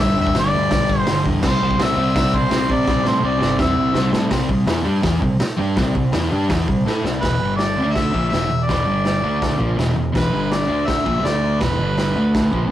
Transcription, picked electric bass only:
0.00 0.15 G1 medium
0.18 0.33 E2 medium
0.36 0.51 G1 medium
0.55 0.69 D2 medium
0.71 0.87 B1 loud
0.89 1.05 G1 medium
1.08 1.23 G1 medium
1.25 1.41 E2 medium
1.44 1.59 C2 medium
1.62 1.77 C2 medium
1.79 1.95 C2 medium
1.97 2.12 C2 medium
2.16 2.31 C2 loud
2.33 2.49 C2 loud
2.51 2.66 C2 loud
2.70 2.85 C3 medium
2.88 3.03 C2 loud
3.06 3.21 A2 medium
3.23 3.39 C2 loud
3.41 3.56 G1 medium
3.59 3.75 E2 loud
3.76 3.92 C2 loud
3.94 4.10 C2 medium
4.12 4.29 A2 medium
4.32 4.48 C2 medium
4.49 4.66 C2 medium
4.67 4.84 E2 medium
4.86 5.03 G2 medium
5.04 5.21 E2 medium
5.22 5.39 C2 medium
5.41 muted picked electric bass stroke soft
5.59 5.76 G2 medium
5.77 5.94 C2 medium
5.95 6.11 C2 medium
6.12 6.29 E2 medium
6.31 6.48 G2 medium
6.50 6.67 E2 medium
6.68 6.84 C2 medium
6.85 7.02 A2 medium
7.03 7.21 C2 medium
7.23 7.40 E1 medium
7.40 7.74 G1 medium
7.77 8.11 D2 medium
8.14 8.31 A#1 medium
8.33 8.49 E1 medium
8.50 8.67 E1 medium
8.69 8.86 E1 medium
8.87 9.21 G1 medium
9.24 9.58 D2 medium
9.61 9.77 A#1 medium
9.78 9.95 E1 medium
9.96 10.13 E1 medium
10.15 10.32 E1 medium
10.32 10.67 G1 medium
10.69 11.04 D2 medium
11.07 11.23 A#1 loud
11.23 11.58 D2 medium
11.62 11.78 E1 medium
11.79 12.13 G1 medium
12.15 12.50 D2 medium
12.53 12.70 A#1 medium

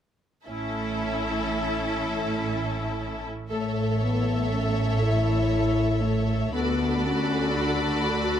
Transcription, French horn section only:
3.50 3.98 A3 soft
4.02 4.52 B3 soft
4.50 5.01 C#4 soft
5.02 6.01 E4 medium
6.02 6.53 A3 soft
6.53 7.03 B3 medium
7.05 7.56 C#4 medium
7.54 8.04 D4 medium
8.06 8.40 F#4 medium

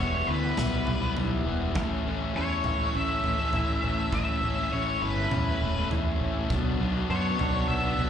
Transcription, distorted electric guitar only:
0.00 0.28 E3 medium
0.00 0.28 G3 medium
0.00 0.29 B3 medium
0.00 0.30 E4 loud
0.28 1.14 E3 medium
0.28 0.44 G3 medium
0.28 0.43 B3 medium
0.28 0.42 E4 medium
0.42 0.74 G3 medium
0.42 0.72 B3 medium
0.42 0.72 E4 medium
0.72 1.02 G3 medium
0.72 1.01 B3 medium
0.72 1.00 E4 medium
1.00 1.15 G3 soft
1.00 1.16 B3 medium
1.00 1.17 E4 medium
1.15 1.44 E3 medium
1.15 1.45 G3 medium
1.15 1.46 B3 medium
1.15 1.47 E4 medium
1.45 1.75 E3 medium
1.45 1.61 G3 medium
1.45 1.59 B3 medium
1.45 1.58 E4 medium
1.59 1.75 G3 medium
1.59 1.74 B3 medium
1.59 1.77 E4 medium
1.74 2.34 A2 medium
1.74 2.04 E3 medium
1.74 2.05 A3 medium
1.74 2.06 C#4 medium
1.74 2.07 E4 medium
2.04 2.34 E3 medium
2.04 2.21 A3 medium
2.04 2.20 C#4 medium
2.04 2.18 E4 medium
2.19 2.35 A3 medium
2.19 2.36 C#4 medium
2.19 2.36 E4 medium
2.34 3.53 A2 medium
2.34 2.62 E3 medium
2.34 2.63 A3 medium
2.34 2.64 C#4 loud
2.34 2.65 E4 loud
2.63 3.08 E3 medium
2.63 2.80 A3 medium
2.63 2.79 C#4 medium
2.63 2.77 E4 medium
2.78 3.09 A3 medium
2.78 3.08 C#4 medium
2.78 3.07 E4 medium
3.08 3.39 A3 medium
3.08 3.38 C#4 medium
3.08 3.37 E4 medium
3.38 3.53 A3 medium
3.38 3.54 C#4 medium
3.38 3.55 E4 medium
3.53 4.10 A2 medium
3.53 3.81 E3 medium
3.53 3.82 A3 loud
3.53 3.83 C#4 medium
3.53 3.84 E4 medium
3.82 4.11 E3 medium
3.82 3.99 A3 medium
3.82 3.98 C#4 medium
3.82 3.96 E4 medium
3.98 4.12 A3 medium
3.98 4.13 C#4 medium
3.98 4.13 E4 medium
4.12 4.71 A2 medium
4.12 4.40 E3 medium
4.12 4.41 A3 medium
4.12 4.42 C#4 loud
4.12 4.43 E4 loud
4.41 4.71 E3 medium
4.41 4.58 A3 medium
4.41 4.57 C#4 medium
4.41 4.55 E4 medium
4.56 4.72 A3 medium
4.56 4.73 C#4 medium
4.56 4.73 E4 medium
4.72 5.32 A2 medium
4.72 5.01 E3 medium
4.72 5.02 A3 medium
4.72 5.03 C#4 medium
4.72 5.04 E4 medium
5.02 5.47 E3 medium
5.02 5.19 A3 medium
5.02 5.18 C#4 medium
5.02 5.16 E4 medium
5.17 5.48 A3 medium
5.17 5.47 C#4 medium
5.17 5.45 E4 medium
5.46 5.78 A3 medium
5.46 5.77 C#4 medium
5.46 5.75 E4 medium
5.76 5.91 A3 medium
5.76 5.92 C#4 medium
5.76 5.92 E4 medium
5.91 6.48 A2 loud
5.91 6.20 E3 medium
5.91 6.21 A3 medium
5.91 6.22 C#4 medium
5.91 6.23 E4 medium
6.21 6.49 E3 medium
6.21 6.37 A3 medium
6.21 6.35 C#4 medium
6.21 6.33 E4 medium
6.35 6.50 A3 medium
6.35 6.49 C#4 medium
6.35 6.48 E4 medium
6.50 6.78 B2 medium
6.50 6.79 F#3 loud
6.50 6.81 B3 medium
6.50 6.81 D4 loud
6.79 7.09 B2 medium
6.79 6.96 F#3 medium
6.79 6.95 B3 medium
6.79 6.93 D4 medium
6.93 7.10 F#3 medium
6.93 7.11 B3 medium
6.93 7.11 D4 medium
7.09 7.39 B2 medium
7.09 7.40 F#3 medium
7.09 7.41 B3 medium
7.09 7.41 D4 medium
7.39 7.84 B2 medium
7.39 7.56 F#3 medium
7.39 7.55 B3 medium
7.39 7.53 D4 medium
7.55 7.85 F#3 medium
7.55 7.84 B3 medium
7.55 7.82 D4 medium
7.83 8.10 F#3 medium
7.83 8.10 B3 medium
7.83 8.10 D4 medium

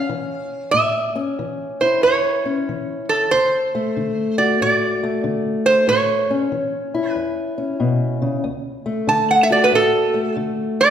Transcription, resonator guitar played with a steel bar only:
0.00 0.71 F5 medium
0.71 1.32 E5 medium
1.81 2.01 C5 medium
2.03 3.05 C#5 medium
3.09 3.29 A4 medium
3.31 4.38 C5 medium
4.38 4.60 D5 medium
4.62 5.21 D5 medium
5.66 5.88 C5 medium
5.89 7.12 C#5 loud
7.12 7.76 B4 loud
9.09 9.29 A5 medium
9.31 9.50 F#5 medium
9.43 9.47 E5 medium
9.52 9.65 D5 medium
9.64 9.71 B4 medium
9.75 10.35 A4 medium
10.81 10.90 D5 medium

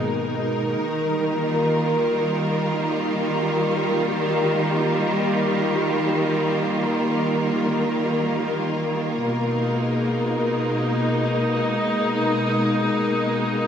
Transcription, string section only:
0.00 0.82 B2 medium
0.00 0.82 G#3 medium
0.00 0.81 A#3 medium
0.00 3.04 D#4 medium
0.00 13.67 A#4 medium
0.82 9.24 D#3 medium
1.07 9.25 G3 medium
1.11 13.67 A#3 medium
1.33 11.51 F4 medium
9.23 13.67 B2 medium
9.47 13.67 D#4 medium
9.66 13.67 G#3 medium

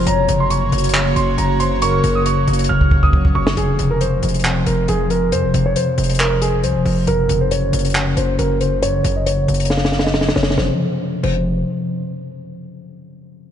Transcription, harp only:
0.00 0.12 F2 loud
0.00 0.12 C3 medium
0.00 0.12 G#3 medium
0.00 0.34 C4 medium
0.07 1.81 F#2 loud
0.28 1.59 C#3 medium
0.51 1.37 F#3 medium
0.72 1.16 A#3 medium
0.94 2.70 C#4 medium
1.16 2.47 A#3 medium
1.38 1.65 F#3 medium
1.60 2.02 C#3 medium
1.82 3.62 F#2 loud
2.04 3.34 C#3 medium
2.26 3.12 F#3 medium
2.47 2.91 A#3 loud
2.70 3.85 C#4 medium
2.92 6.13 A#3 medium
3.13 3.40 F#3 medium
3.35 3.62 C#3 medium
3.57 5.31 F2 medium
3.79 5.09 C3 medium
4.01 4.87 F3 medium
4.23 4.65 G#3 medium
4.45 6.19 C4 medium
4.67 5.96 G#3 medium
4.88 5.15 F3 medium
5.10 5.53 C3 medium
5.32 7.12 F2 medium
5.54 6.84 C3 medium
5.76 6.63 F3 medium
5.98 6.41 G#3 loud
6.20 7.35 C4 medium
6.42 7.12 G#3 medium
6.64 6.91 F3 medium
6.86 7.12 C3 medium
7.08 8.81 F#2 medium
7.29 8.59 C#3 medium
7.52 8.37 F#3 medium
7.73 8.16 A#3 medium
7.95 9.04 C#4 medium
8.17 9.26 A#3 medium
8.39 8.66 F#3 medium
8.61 9.03 C#3 medium
8.83 10.63 F#2 loud
9.04 10.35 C#3 medium
9.27 10.13 F#3 medium
9.48 9.91 A#3 medium
9.71 10.58 C#4 medium
9.92 10.58 A#3 medium
10.14 10.41 F#3 loud
10.36 10.63 C#3 medium
10.54 10.71 C3 medium
10.54 10.70 F3 medium
10.59 10.70 G#3 medium
10.59 10.70 C4 loud
11.22 11.44 C3 medium
11.22 11.44 F3 medium
11.22 11.44 G#3 medium
11.22 11.44 C4 medium

